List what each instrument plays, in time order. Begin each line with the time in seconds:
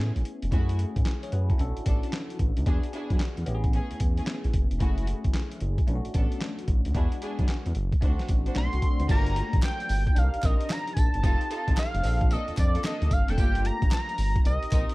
Already playing: tine electric piano B3 C#4 E4 G#4
0.00 analog synth bass A2
0.16 analog synth bass A1, closed hi-hat
0.25 closed hi-hat
0.42 analog synth bass E1, closed hi-hat
0.51 analog synth bass F#2, tine electric piano A3 C#4 E4 G#4, string section A3 E4 F#4, kick, closed hi-hat
0.69 closed hi-hat
0.79 closed hi-hat
0.96 analog synth bass A2, kick, closed hi-hat
1.06 snare, clap, closed hi-hat
1.23 tine electric piano G#4 C#5, closed hi-hat
1.32 analog synth bass F#2, tine electric piano F#4 B4, closed hi-hat
1.50 tine electric piano E4 A4, kick, closed hi-hat
1.58 analog synth bass B1, tine electric piano C#4 D4 F#4 A4, closed hi-hat
1.77 analog synth bass A1, closed hi-hat
1.85 analog synth bass A1, string section B3 D4 A4, kick, closed hi-hat
2.03 closed hi-hat
2.13 snare, clap, closed hi-hat
2.30 closed hi-hat
2.39 analog synth bass A1, kick, closed hi-hat
2.57 analog synth bass D2, closed hi-hat
2.66 analog synth bass E2, tine electric piano B3 D4 F#4 G#4, string section D4 E4 G#4, kick, closed hi-hat
2.83 closed hi-hat
2.93 string section D4 E4 G#4, closed hi-hat
3.10 analog synth bass F#2, kick, closed hi-hat
3.20 snare, clap, closed hi-hat
3.37 analog synth bass E2, closed hi-hat
3.46 analog synth bass A1, tine electric piano B3 C#4 E4 G4, closed hi-hat
3.55 tine electric piano G#4
3.64 kick, closed hi-hat
3.73 string section A3 C#4 G#4, closed hi-hat
3.91 analog synth bass E2, closed hi-hat
4.00 analog synth bass E2, kick, closed hi-hat
4.17 string section A3 C#4 G#4, closed hi-hat
4.27 snare, clap, closed hi-hat
4.44 analog synth bass A1, closed hi-hat
4.54 analog synth bass F#1, kick, closed hi-hat
4.71 analog synth bass E1, closed hi-hat
4.80 analog synth bass F#1, tine electric piano A3 C#4 E4 G#4, string section A3 E4 F#4, kick, closed hi-hat
4.98 closed hi-hat
5.07 closed hi-hat
5.24 analog synth bass A1, kick, closed hi-hat
5.34 snare, clap, closed hi-hat
5.51 closed hi-hat
5.60 analog synth bass F#1, closed hi-hat
5.78 kick, closed hi-hat
5.87 analog synth bass B1, tine electric piano A3 C#4 D4 E4, closed hi-hat
5.96 tine electric piano F#4
6.05 analog synth bass A1, closed hi-hat
6.14 analog synth bass A1, string section B3 D4 A4, kick, closed hi-hat
6.32 closed hi-hat
6.41 snare, clap, closed hi-hat
6.59 closed hi-hat
6.68 analog synth bass A1, kick, closed hi-hat
6.85 analog synth bass D2, closed hi-hat
6.94 analog synth bass E2, tine electric piano G#3 B3 D4 F#4, string section D4 E4 G#4, kick, closed hi-hat
7.12 closed hi-hat
7.21 string section D4 E4 G#4, closed hi-hat
7.39 analog synth bass F#2, kick, closed hi-hat
7.48 snare, clap, closed hi-hat
7.66 analog synth bass E2, closed hi-hat
7.75 analog synth bass F#1, closed hi-hat
7.92 kick, closed hi-hat
8.01 analog synth bass D2, tine electric piano A3 C4 D4 D#4, string section D4 F#4 C5, kick, closed hi-hat
8.10 tine electric piano F#4
8.19 analog synth bass A1, snare, closed hi-hat
8.28 analog synth bass A1, kick, closed hi-hat
8.46 string section D4 F#4 C5, closed hi-hat
8.55 analog synth bass B1, tine electric piano A3 D4, analog synth lead C6, snare, clap, closed hi-hat
8.73 analog synth bass C2, tine electric piano C4 F#4, closed hi-hat
8.82 tine electric piano D4 A4, kick, closed hi-hat
9.00 analog synth bass D2, tine electric piano F#4 C5, closed hi-hat
9.08 analog synth bass G1, tine electric piano A3 A#3 D4 F4, string section F4 G4 A#4, analog synth lead A#5, kick, closed hi-hat, crash, tambourine
9.26 closed hi-hat
9.36 closed hi-hat
9.53 analog synth bass A#1, kick, closed hi-hat
9.62 analog synth lead G5, snare, clap, closed hi-hat, tambourine
9.80 closed hi-hat
9.89 analog synth bass G1, open hi-hat, tambourine
10.07 kick, closed hi-hat
10.15 analog synth bass C2, tine electric piano D4 D#4 G4 A4, analog synth lead F5, closed hi-hat, tambourine
10.24 tine electric piano A#4
10.34 analog synth bass A#1, closed hi-hat
10.43 analog synth bass A#1, string section C4 D#4 A#4, analog synth lead D#5, kick, clap, closed hi-hat, tambourine
10.61 closed hi-hat
10.70 analog synth lead A#5, snare, clap, closed hi-hat, tambourine
10.87 closed hi-hat
10.93 analog synth bass A#1, analog synth lead G#5, kick, closed hi-hat, tambourine
10.98 analog synth lead A5
11.14 analog synth bass G1, closed hi-hat
11.23 analog synth bass F1, tine electric piano C4 D#4 G4 A4, string section D#4 F4 A4, kick, closed hi-hat, tambourine
11.41 closed hi-hat
11.50 string section D#4 F4 A4, closed hi-hat
11.68 analog synth bass A1, kick, closed hi-hat
11.77 analog synth lead F5, snare, clap, closed hi-hat, tambourine
11.95 analog synth bass F1, closed hi-hat
12.03 analog synth bass A#1, tine electric piano C4 D4 F4 A4, open hi-hat, tambourine
12.21 kick, closed hi-hat
12.30 string section A#3 D4 A4, analog synth lead D#5, closed hi-hat, tambourine
12.48 analog synth bass F2, closed hi-hat
12.57 analog synth bass F2, analog synth lead D5, kick, clap, closed hi-hat, tambourine
12.74 string section A#3 D4 A4, closed hi-hat
12.84 string section A#3 D4 A4, analog synth lead D#5, snare, clap, closed hi-hat, tambourine
13.02 analog synth bass D2, closed hi-hat
13.11 analog synth bass G1, analog synth lead F5, kick, closed hi-hat, tambourine
13.28 analog synth bass F1, string section A#3 D4 A4, analog synth lead G5, closed hi-hat
13.37 analog synth bass G1, tine electric piano A3 A#3 D4 F4, string section A#3 F4 G4, analog synth lead G5, kick, closed hi-hat, tambourine
13.55 closed hi-hat
13.65 analog synth lead A#5, closed hi-hat
13.82 analog synth bass A#1, kick, closed hi-hat
13.91 analog synth lead A#5, snare, clap, closed hi-hat, tambourine
14.09 closed hi-hat
14.18 analog synth bass G1, open hi-hat, tambourine
14.36 kick, closed hi-hat
14.44 analog synth bass C2, tine electric piano C4 D#4 G4 A#4, analog synth lead D#5, closed hi-hat, tambourine
14.63 analog synth bass A#1, closed hi-hat
14.71 analog synth bass A#1, string section C4 D#4 A#4, kick, clap, closed hi-hat, tambourine
14.89 closed hi-hat